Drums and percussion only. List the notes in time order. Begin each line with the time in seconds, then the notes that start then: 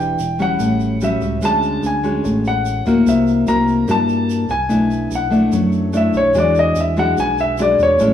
0.19 shaker
0.39 shaker
0.60 shaker
0.80 shaker
1.01 shaker
1.21 shaker
1.42 shaker
1.63 shaker
1.83 shaker
2.04 shaker
2.25 shaker
2.45 shaker
2.65 shaker
2.86 shaker
3.07 shaker
3.27 shaker
3.47 shaker
3.68 shaker
3.88 shaker
4.09 shaker
4.30 shaker
4.49 shaker
4.70 shaker
4.91 shaker
5.11 shaker
5.32 shaker
5.52 shaker
5.72 shaker
5.93 shaker
6.13 shaker
6.34 shaker
6.55 shaker
6.75 shaker
6.96 shaker
7.17 shaker
7.38 shaker
7.57 shaker
7.79 shaker
7.99 shaker